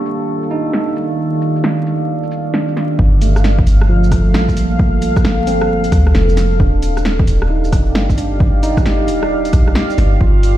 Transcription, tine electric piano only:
0.00 3.00 A#3 soft
0.00 0.96 D4 medium
0.51 1.86 D#4 medium
2.54 3.17 D4 soft
3.22 4.07 A3 medium
3.89 5.25 F3 medium
4.08 5.40 A3 medium
4.34 5.70 G3 medium
4.54 5.85 A#3 medium
5.47 6.78 C4 medium
6.60 7.95 D4 medium
7.50 8.62 D#4 medium
8.18 9.53 D4 medium
8.63 9.99 D#4 medium
8.82 10.14 G4 medium
10.21 10.57 F4 medium

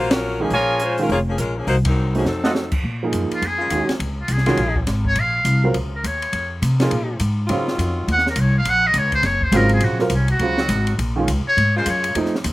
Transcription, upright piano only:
0.40 0.50 D#3 medium
0.40 0.51 G#3 medium
0.40 0.51 C#4 medium
0.40 0.51 D#4 medium
0.99 1.09 D#3 medium
0.99 1.09 G#3 medium
0.99 1.10 C#4 medium
0.99 1.10 F4 medium
2.15 2.25 A3 medium
2.15 2.25 C4 medium
2.15 2.25 D#4 medium
2.15 2.26 F#4 medium
2.45 2.54 A3 medium
2.45 2.55 C4 medium
2.45 2.55 D#4 medium
2.45 2.55 F#4 medium
3.03 3.40 F3 medium
3.03 3.41 A#3 medium
3.03 3.41 D#4 medium
3.03 3.41 G#4 medium
3.71 3.87 D#3 medium
3.71 3.88 G#3 soft
3.71 3.88 C#4 soft
3.71 3.88 F#4 medium
4.47 4.57 D#3 medium
4.47 4.57 G#3 medium
4.47 4.57 C#4 medium
4.47 4.57 F#4 medium
5.64 5.74 F#3 medium
5.64 5.74 C4 medium
5.64 5.74 F4 medium
5.64 5.74 A#4 medium
6.81 6.90 F3 medium
6.81 6.91 A#3 medium
6.81 6.91 D#4 medium
6.81 6.92 G#4 medium
7.49 7.66 C#3 medium
7.49 7.66 F#3 medium
7.49 7.66 C4 soft
7.49 7.66 F4 medium
9.52 9.96 C#3 medium
9.52 9.97 F#3 medium
9.52 9.97 C4 medium
9.52 9.97 F4 medium
10.00 10.10 F#3 medium
10.00 10.10 C4 medium
10.00 10.11 F4 medium
10.00 10.11 A#4 medium
10.40 10.57 C#3 medium
10.40 10.57 F#3 medium
10.40 10.57 C4 soft
10.40 10.58 F4 medium
11.16 11.27 D#3 medium
11.16 11.27 G#3 medium
11.16 11.27 C#4 medium
11.16 11.27 F4 medium
12.16 12.32 F3 medium
12.16 12.32 A3 medium
12.16 12.32 C4 medium
12.16 12.33 D#4 medium

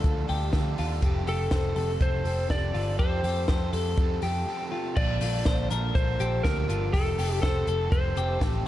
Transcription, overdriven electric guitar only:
0.03 0.29 F3 medium
0.03 0.29 D4 medium
0.03 0.28 F4 medium
0.03 0.26 A4 medium
0.28 0.52 D4 soft
0.28 0.52 F4 medium
0.28 0.52 A4 medium
0.52 0.77 D3 medium
0.52 0.78 F3 medium
0.52 0.78 D4 loud
0.52 0.76 F4 loud
0.52 0.75 A4 loud
0.76 1.02 D4 medium
0.76 1.03 F4 medium
0.76 1.02 A4 medium
1.01 1.27 F3 medium
1.01 1.27 C4 medium
1.01 1.26 G4 medium
1.01 1.25 A4 loud
1.26 1.50 C4 soft
1.26 1.51 G4 soft
1.26 1.51 A4 medium
1.50 1.76 F3 medium
1.50 1.76 C4 medium
1.50 1.75 G4 medium
1.50 1.73 A4 medium
1.75 2.00 C4 soft
1.75 2.01 G4 soft
1.75 2.00 A4 medium
2.00 2.25 F3 medium
2.00 2.26 C4 medium
2.00 2.25 G4 medium
2.00 2.23 A4 medium
2.24 2.49 C4 soft
2.24 2.49 G4 soft
2.24 2.50 A4 medium
2.49 2.74 F3 medium
2.49 2.75 C4 medium
2.49 2.73 G4 medium
2.49 2.72 A4 medium
2.73 2.98 C4 soft
2.73 2.98 G4 soft
2.73 2.99 A4 medium
2.98 3.24 F3 medium
2.98 3.24 C4 medium
2.98 3.23 G4 medium
2.98 3.22 A4 medium
3.23 3.48 C4 soft
3.23 3.48 G4 soft
3.23 3.48 A4 medium
3.48 3.73 F3 medium
3.48 3.74 C4 medium
3.48 3.73 G4 medium
3.48 3.71 A4 medium
3.73 3.98 C4 medium
3.73 3.99 G4 medium
3.73 3.98 A4 medium
3.98 4.23 F3 medium
3.98 4.24 C4 medium
3.98 4.23 G4 medium
3.98 4.21 A4 medium
4.23 4.46 C4 medium
4.23 4.47 G4 medium
4.23 4.47 A4 medium
4.46 4.72 F3 loud
4.46 4.72 C4 loud
4.46 4.72 G4 medium
4.46 4.70 A4 loud
4.71 4.97 C4 soft
4.71 4.97 G4 medium
4.71 4.96 A4 medium
4.96 5.21 A#2 medium
4.96 5.21 D3 medium
4.96 5.21 F3 medium
4.96 5.22 A#3 medium
4.96 5.21 D4 medium
4.96 5.20 A4 medium
5.21 5.45 F3 soft
5.21 5.45 A#3 soft
5.21 5.46 D4 soft
5.21 5.46 A4 medium
5.45 5.70 A#2 medium
5.45 5.70 D3 medium
5.45 5.71 F3 medium
5.45 5.71 A#3 medium
5.45 5.70 D4 medium
5.45 5.68 A4 medium
5.70 5.93 F3 medium
5.70 5.94 A#3 medium
5.70 5.95 D4 medium
5.70 5.95 A4 medium
5.94 6.19 F3 medium
5.94 6.20 A#3 medium
5.94 6.19 D4 medium
5.94 6.17 A4 medium
6.19 6.44 F3 soft
6.19 6.44 A#3 medium
6.19 6.44 D4 medium
6.19 6.44 A4 medium
6.44 6.69 A#2 medium
6.44 6.69 D3 medium
6.44 6.69 F3 medium
6.44 6.68 A#3 medium
6.44 6.68 D4 medium
6.44 6.66 A4 loud
6.67 6.91 F3 soft
6.67 6.93 A#3 soft
6.67 6.93 D4 soft
6.67 6.93 A4 medium
6.92 7.18 F3 medium
6.92 7.18 C4 medium
6.92 7.17 G4 medium
6.92 7.15 A4 medium
7.16 7.41 C4 soft
7.16 7.41 G4 medium
7.16 7.42 A4 medium
7.41 7.67 F3 medium
7.41 7.67 C4 medium
7.41 7.66 G4 medium
7.41 7.64 A4 medium
7.66 7.90 C4 soft
7.66 7.91 G4 medium
7.66 7.91 A4 medium
7.90 8.16 F3 medium
7.90 8.16 C4 medium
7.90 8.15 G4 medium
7.90 8.14 A4 medium
8.15 8.39 C4 soft
8.15 8.40 G4 medium
8.15 8.40 A4 medium
8.39 8.65 F3 medium
8.39 8.65 C4 medium
8.39 8.66 G4 medium
8.39 8.64 A4 medium

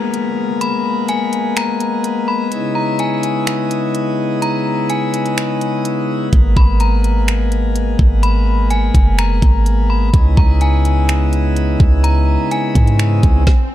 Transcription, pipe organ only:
0.00 10.10 G#3 medium
0.00 2.48 A#3 medium
0.00 10.10 B3 medium
2.52 6.29 C#3 medium
2.52 6.29 D#4 medium
2.52 6.29 E4 medium
6.33 10.10 A#3 medium
10.13 13.44 C#3 medium
10.13 13.44 G#3 medium
10.13 13.43 B3 medium
10.13 13.44 D#4 medium
10.13 13.44 E4 medium

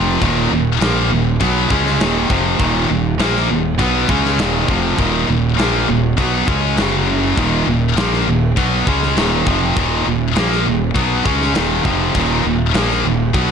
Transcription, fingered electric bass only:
0.00 0.19 F1 medium
0.22 0.49 D#1 medium
0.51 0.79 D#1 medium
0.81 1.09 A#1 medium
1.10 1.38 D#1 medium
1.41 1.68 B1 medium
1.70 1.98 C#2 loud
2.00 2.28 D#1 medium
2.30 2.58 F1 medium
2.60 2.87 D#1 loud
2.90 3.17 D#1 medium
3.19 3.47 A#1 loud
3.50 3.77 D#1 medium
3.79 4.07 B1 loud
4.09 4.37 C#2 loud
4.39 4.67 D#1 loud
4.68 4.96 F1 medium
4.98 5.26 D#1 medium
5.28 5.56 D#1 medium
5.58 5.86 A#1 medium
5.88 6.16 D#1 medium
6.18 6.46 B1 loud
6.48 6.76 C#2 medium
6.78 7.33 F#1 medium
7.37 7.65 D#1 medium
7.67 7.95 D#1 medium
7.97 8.25 A#1 medium
8.27 8.55 D#1 medium
8.57 8.85 B1 loud
8.87 9.15 C#2 medium
9.17 9.45 D#1 medium
9.47 9.75 F1 loud
9.76 10.04 D#1 medium
10.07 10.34 D#1 medium
10.37 10.65 A#1 loud
10.67 10.95 D#1 medium
10.95 11.24 B1 loud
11.26 11.54 C#2 medium
11.57 11.84 D#1 medium
11.85 12.13 F1 medium
12.15 12.43 D#1 loud
12.45 12.73 D#1 medium
12.74 13.03 A#1 medium
13.04 13.33 D#1 medium
13.34 13.51 B1 loud

